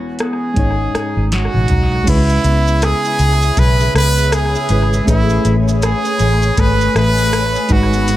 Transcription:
Already playing: E1 E3 G#3 B3 C#4 E4 B4
0.19 B3 G#4, cross-stick, closed hi-hat
0.54 G#1 G#2 G#3 C#4 D#4, kick, closed hi-hat
0.59 C#5
0.95 D#4, muted fingered electric bass stroke, cross-stick, closed hi-hat
1.17 G#1
1.32 C#4 F#4, snare, closed hi-hat
1.54 A1, high tom
1.68 B1 D#4, closed hi-hat, mid tom
1.92 floor tom
2.04 C#2 C#3 G#3 C#4 E4 G#4 C#5 E5 B5, kick, closed hi-hat, crash, shaker
2.09 E4 B4
2.29 E4, shaker
2.44 C#2 B3, closed hi-hat, shaker
2.67 E4, shaker
2.82 G#4, cross-stick, closed hi-hat, shaker
3.05 E4, shaker
3.19 C#2 G#4, closed hi-hat, shaker
3.42 E4, shaker
3.57 B1 C#3 B4, kick, closed hi-hat, shaker
3.80 E4, shaker
3.95 C#2 B3 B4, cross-stick, closed hi-hat, shaker
4.18 E4, shaker
4.32 G#4, cross-stick, closed hi-hat, shaker
4.55 E4, shaker
4.69 G#1 G#3 C#4 E4 G#4 B4, closed hi-hat, shaker
4.92 E4, shaker
5.05 A1 A3 C#4 G#4 G#5, kick, closed hi-hat, shaker
5.09 E4 B4
5.30 G#4, shaker
5.45 A1 E4, closed hi-hat, shaker
5.68 G#4, shaker
5.82 G#4 C#5, cross-stick, closed hi-hat, shaker
6.05 G#4, shaker
6.19 A1 C#5, closed hi-hat, shaker
6.43 G#4, shaker
6.57 G#1 A3 B4, kick, closed hi-hat, shaker
6.80 G#4, shaker
6.95 A1 E4 B4, cross-stick, closed hi-hat, shaker
7.17 G#4, shaker
7.33 C#5, cross-stick, closed hi-hat, shaker
7.56 G#4, shaker
7.69 G#1 G#2 G#3 D#4 F#4 G#4 D#5 F#5, kick, closed hi-hat, shaker
7.73 B4
7.93 B3, shaker
8.08 G#2, closed hi-hat, shaker

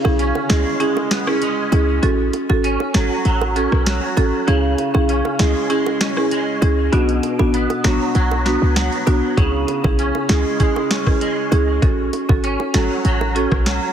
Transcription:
Already playing: C#3
0.04 B1 C#4 E4 G#4, high bongo
0.19 C#4, closed hi-hat
0.35 high bongo
0.49 C#2 G#3 C#4 E4 G#4, finger snap, snare, closed hi-hat, high bongo
0.80 G#3 C#4 E4 G#4, closed hi-hat
0.97 high bongo
1.11 B3, finger snap, snare, closed hi-hat
1.27 C#4 E4 G#4, cross-stick
1.42 G#3, closed hi-hat
1.72 C#2 C#4 E4 G#4, closed hi-hat, high bongo, low bongo
2.02 A1 C#4 F#4 A4, closed hi-hat
2.33 closed hi-hat, high bongo
2.49 G#1 C#4 F#4 A4, high bongo
2.64 C#4, closed hi-hat
2.80 high bongo
2.94 G#1 F#3 C#4 F#4 A4, finger snap, snare, closed hi-hat, high bongo
3.25 A1 F#3, closed hi-hat
3.41 high bongo
3.56 C#4 F#4 A4, closed hi-hat
3.72 B1, cross-stick
3.86 F#3, finger snap, snare, closed hi-hat
4.17 A1 C#4 F#4 A4, closed hi-hat, high bongo, low bongo
4.47 C#2 C#3 C#4 E4 G#4, closed hi-hat
4.78 closed hi-hat, high bongo
4.94 B1 C#4 E4 G#4, high bongo
5.09 C#4, closed hi-hat
5.25 high bongo
5.39 C#2 G#3 C#4 E4 G#4, finger snap, snare, closed hi-hat, high bongo
5.70 G#3 C#4 E4 G#4, closed hi-hat
5.86 high bongo
6.01 C#4, finger snap, snare, closed hi-hat
6.17 C#4 E4 G#4, cross-stick
6.31 G#3, closed hi-hat
6.62 C#2 C#4 E4 G#4, closed hi-hat, high bongo, low bongo
6.92 B1 B2 B3 D4 F#4, closed hi-hat
7.09 closed hi-hat
7.23 closed hi-hat, high bongo
7.39 A1 B3 D4 F#4, high bongo
7.54 B3, closed hi-hat
7.70 closed hi-hat, high bongo
7.84 A1 F#3 B3 D4 F#4, finger snap, snare, closed hi-hat, high bongo, low bongo
8.15 B1 F#3, closed hi-hat
8.31 high bongo
8.45 B3 D4 F#4, snare, closed hi-hat
8.62 C#2
8.76 F#3, finger snap, snare, closed hi-hat
8.92 closed hi-hat
9.07 B1 B3 D4 F#4, closed hi-hat, high bongo, low bongo
9.37 C#2 C#3 C#4 E4 G#4, kick, closed hi-hat
9.68 closed hi-hat, high bongo
9.84 B1 C#4 E4 G#4, kick, high bongo
9.99 C#4, closed hi-hat
10.15 high bongo
10.29 C#2 G#3 C#4 E4 G#4, finger snap, snare, closed hi-hat, high bongo
10.60 G#3 C#4 E4 G#4, kick, closed hi-hat
10.76 high bongo
10.91 C#4, finger snap, snare, closed hi-hat
11.07 C#4 E4 G#4, kick, cross-stick
11.21 G#3, closed hi-hat
11.52 C#2 C#4 E4 G#4, closed hi-hat, high bongo, low bongo
11.82 A1 C#4 F#4 A4, kick, closed hi-hat
12.13 closed hi-hat, high bongo
12.29 G#1 C#4 F#4 A4, kick, high bongo
12.44 C#4, closed hi-hat
12.60 high bongo
12.74 G#1 F#3 C#4 F#4 A4, finger snap, snare, closed hi-hat, high bongo
13.05 A1 F#3, closed hi-hat
13.21 high bongo
13.35 C#4 F#4 A4, closed hi-hat
13.52 B1, kick, cross-stick
13.66 F#3, finger snap, snare, closed hi-hat

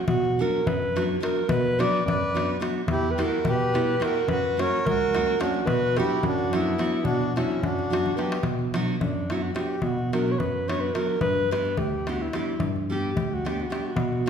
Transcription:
0.07 B2 F#4, darbuka dum
0.25 darbuka tek
0.39 F#3 B3 D4 F#4 A#4
0.66 F#2 B4, darbuka dum
0.82 darbuka tek
0.96 F#3 B3 D4 F#4, darbuka tek
1.20 F#3 B3 D4 F#4 A#4, darbuka tek
1.36 darbuka tek
1.48 B2 B4, darbuka dum
1.66 darbuka tek
1.79 F#3 B3 D4 F#4 B4 D5, darbuka tek
1.95 darbuka tek
2.05 F#2 B4 D5, darbuka dum
2.34 F#3 B3 D4 F#4, darbuka tek
2.51 darbuka tek
2.60 F#3 B3 D4 F#4, darbuka tek
2.87 E2, darbuka dum
2.91 E4 G4
3.03 darbuka tek
3.11 G4 B4
3.18 G3 B3 E4 G4, darbuka tek
3.22 F#4 A#4
3.45 B2 G4, darbuka dum
3.50 B4
3.60 darbuka tek
3.74 G3 B3 E4 G4, darbuka tek
4.00 G3 B3 E4 F#4 G4, darbuka tek
4.04 A#4
4.16 darbuka tek
4.27 F#2 F#4 B4, darbuka dum
4.57 F#3 A#3 C#4 F#4 C#5, darbuka tek
4.62 A#4
4.85 C#2 F#4 A#4, darbuka dum
5.02 darbuka tek
5.14 F#3 A#3 C#4 F#4, darbuka tek
5.40 F#3 A#3 C#4 D4 F#4, darbuka tek
5.54 darbuka tek
5.66 B2 F#4 B4, darbuka dum
5.82 darbuka tek
5.97 F#3 B3 D4 E4 F#4 G4, darbuka tek
6.23 F#2 D4 F#4, darbuka dum
6.39 darbuka tek
6.53 F#3 B3 D4 E4 F#4, darbuka tek
6.78 F#3 B3 D4 F#4, darbuka tek
7.03 B2 D4 F#4, darbuka dum
7.22 darbuka tek
7.36 F#3 B3 C#4 D4 E4 F#4, darbuka tek
7.52 darbuka tek
7.62 F#2 D4 F#4, darbuka dum
7.79 darbuka tek
7.90 F#3 B3 D4 F#4, darbuka tek
8.06 darbuka dum
8.17 F#3 B3 D4 F#4 G4 B4, darbuka tek
8.32 darbuka tek
8.43 B2, darbuka dum
8.59 darbuka tek
8.74 F#3 B3 D4 F#4, darbuka tek
8.88 darbuka tek
9.00 F#2 D4, darbuka dum
9.30 F#3 B3 D4 E4 F#4, darbuka tek
9.42 F#4
9.54 F#3 B3 D4 F#4 G4, darbuka tek
9.82 B2 F#4, darbuka dum
9.99 darbuka tek
10.13 F#3 B3 D4 F#4 A#4, darbuka tek
10.28 C#5, darbuka tek
10.39 F#2 B4, darbuka dum
10.68 F#3 B3 D4 F#4 C#5, darbuka tek
10.80 B4
10.94 F#3 B3 D4 F#4 A#4, darbuka tek
11.21 G2 B4, darbuka dum
11.38 darbuka tek
11.51 G3 B3 D4 G4 B4, darbuka tek
11.65 darbuka tek
11.77 D2 G4, darbuka dum
12.07 G3 B3 D4 F#4 G4, darbuka tek
12.21 E4
12.33 G3 B3 D4 G4, darbuka tek
12.59 G2, darbuka dum
12.76 darbuka tek
12.90 G3 B3 D4 G4
13.15 D2, darbuka dum
13.34 F#4
13.45 G3 B3 D4 G4, darbuka tek
13.59 F#4, darbuka tek
13.70 G3 B3 D4 G4, darbuka tek
13.87 F#4
13.96 B2, darbuka dum
14.13 darbuka tek
14.26 F#3 B3 D4

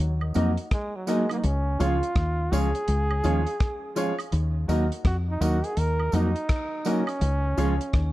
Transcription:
Already playing: F#3
0.00 D#2
0.21 A#4 D#5, high woodblock
0.34 F2 F#3 A#3 D#4 F#4 A#4 D#5, closed hi-hat, tambourine
0.57 closed hi-hat
0.71 G#3, kick, cross-stick, closed hi-hat
0.96 F#3
1.07 F#3 G#3 A#3 D#4 F#4 A#4 D#5, closed hi-hat, tambourine
1.29 F#3 A#3 D#4 F#4, closed hi-hat, high woodblock
1.39 D#4
1.44 C#2 C#4, closed hi-hat
1.79 C#2 F3 G#3 C#4 F4 G#4 C#5, closed hi-hat, tambourine
2.03 closed hi-hat
2.16 D#2, kick, cross-stick, closed hi-hat
2.51 C#2 F3 G#3 C#4 F4 G#4 C#5, closed hi-hat, tambourine
2.75 G#4 C#5, closed hi-hat
2.88 C#2, closed hi-hat
3.11 G#4 C#5, high woodblock
3.23 D#2 F3 G#3 C#4 F4 G#4 C#5, closed hi-hat, tambourine
3.47 closed hi-hat
3.60 kick, cross-stick, closed hi-hat
3.96 F3 G#3 C#4 F4 G#4 C#5, closed hi-hat, tambourine
4.19 closed hi-hat, high woodblock
4.32 D#2, closed hi-hat
4.68 D#2 F#3 A#3 D#4 F#4 A#4 D#5, closed hi-hat, tambourine
4.92 closed hi-hat
5.05 F2 F#4, kick, cross-stick, closed hi-hat
5.30 D#4
5.41 D#2 F#3 A#3 D#4 F#4 A#4 D#5, closed hi-hat, tambourine
5.64 G#4 A#4 D#5, closed hi-hat
5.77 D#2 A#4, closed hi-hat
6.00 A#4 D#5, high woodblock
6.12 F2 F#3 A#3 D#4 F#4 A#4 D#5, closed hi-hat, tambourine
6.36 closed hi-hat
6.49 kick, cross-stick, closed hi-hat
6.85 F#3 A#3 C#4 D#4 F#4 A#4 D#5, closed hi-hat, tambourine
7.07 closed hi-hat, high woodblock
7.21 C#2, closed hi-hat
7.57 C#2 F3 G#3 C#4 F4 G#4 C#5, closed hi-hat, tambourine
7.81 closed hi-hat
7.93 D#2, kick, cross-stick, closed hi-hat

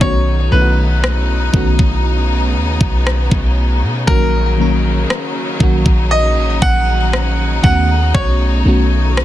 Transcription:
0.00 B1 C#3 D#3 A3 B3 C#4 D#4 F#4 C#5, kick
0.51 B1 D#3 A3 B3 C#4 E4 B4
0.61 F#4
1.04 cross-stick
1.53 B1 D#3 A3 B3 C#4 F#4, kick
1.79 kick
2.05 B3
2.55 D#2
2.81 B1, kick
3.07 cross-stick
3.31 B1, kick
3.82 B2
4.07 A#1 D#3 F#3 A#3 C#4 D#4 A#4, kick
4.11 F#4
4.58 D#3 F#3 A#3 C#4 A#4
5.10 cross-stick
5.59 A#1 D#3 F#3 A#3 C#4 F#4, kick
5.86 A#1, kick
6.11 D#5
6.37 A1
6.62 A#1 F#5, kick
7.13 cross-stick
7.63 D#2 D#3 A3 B3 C#4 F#4 F#5, kick
8.14 B1 C#5, kick
8.64 B1 D#3 A3 B3 C#4 F#4
9.17 cross-stick

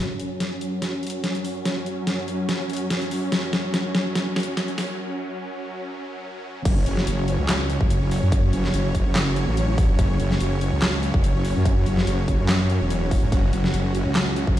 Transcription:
0.00 F#2 F#3 C#4
0.20 closed hi-hat
0.40 snare, closed hi-hat
0.61 closed hi-hat
0.82 snare, closed hi-hat
1.03 closed hi-hat
1.07 closed hi-hat
1.10 closed hi-hat
1.24 snare, closed hi-hat
1.35 closed hi-hat
1.45 open hi-hat
1.65 snare, closed hi-hat
1.86 closed hi-hat
2.07 snare, closed hi-hat
2.28 closed hi-hat
2.49 snare, closed hi-hat
2.70 closed hi-hat
2.73 closed hi-hat
2.77 closed hi-hat
2.90 snare, closed hi-hat
3.01 closed hi-hat
3.11 open hi-hat
3.32 snare, closed hi-hat
3.53 snare, closed hi-hat
3.74 snare, closed hi-hat
3.95 snare, closed hi-hat
4.15 snare, closed hi-hat
4.36 snare, closed hi-hat
4.40 closed hi-hat
4.43 closed hi-hat
4.57 snare, closed hi-hat
4.68 closed hi-hat
4.78 snare, open hi-hat
6.65 F#1 F#3 C#4 C#5, kick, closed hi-hat, crash
6.86 F#1, closed hi-hat
6.97 snare
7.07 F#1, closed hi-hat
7.28 closed hi-hat
7.39 C#2
7.49 snare, clap, closed hi-hat
7.70 closed hi-hat
7.81 F#1, kick
7.90 closed hi-hat
8.11 open hi-hat
8.22 F#2
8.32 kick, closed hi-hat
8.53 F#1, closed hi-hat
8.64 snare
8.74 F#1, closed hi-hat
8.95 kick, closed hi-hat
9.06 F#1
9.15 snare, clap, closed hi-hat
9.36 closed hi-hat
9.47 A1
9.57 closed hi-hat
9.78 kick, open hi-hat
9.89 F#1
9.99 F#1, kick, closed hi-hat
10.20 F#1, closed hi-hat
10.31 snare
10.40 F#1, closed hi-hat
10.61 closed hi-hat
10.72 C#2
10.82 snare, clap, closed hi-hat
11.03 closed hi-hat
11.14 F#1, kick
11.24 closed hi-hat
11.45 open hi-hat
11.56 F#2
11.65 kick, closed hi-hat
11.86 F#1, closed hi-hat
11.97 snare
12.07 F#1, closed hi-hat
12.28 kick, closed hi-hat
12.39 F#2
12.49 snare, clap, closed hi-hat
12.70 closed hi-hat
12.81 E1
12.90 closed hi-hat
13.11 kick, open hi-hat
13.22 G#1
13.32 F#1 F#4, kick, closed hi-hat
13.53 F#1, closed hi-hat
13.64 snare
13.74 F#1, closed hi-hat
13.95 closed hi-hat
14.06 C#2
14.15 snare, clap, closed hi-hat
14.36 closed hi-hat
14.47 F#1, kick

